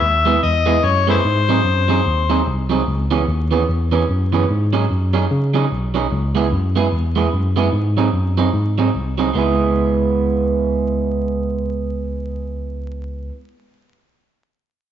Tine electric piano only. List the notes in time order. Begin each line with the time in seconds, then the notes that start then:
0.01 D#2
0.43 E2
0.83 F#2
1.25 G#2
1.65 F#2
2.06 D#2
2.47 C2
2.88 C#2
3.28 D#2
3.69 E2
4.09 F#2
4.50 G#2
4.91 F#2
5.31 C#3
5.72 B1
6.12 C#2
6.52 F#2
6.92 E2
7.33 F#2
7.73 G#2
8.13 F#2
8.54 G#2
8.94 C2
9.35 C#2